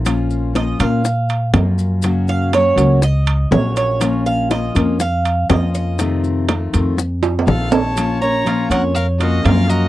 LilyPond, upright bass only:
\new Staff \with { instrumentName = "Upright bass" } { \clef bass \time 4/4 \key bes \minor \tempo 4 = 121 bes,,4. bes,4. ges,4~ | ges,4. des,4. bes,,4~ | bes,,4. f,4. f,4~ | f,4. f,4. bes,,4~ |
bes,,4. f,4. ges,4 | }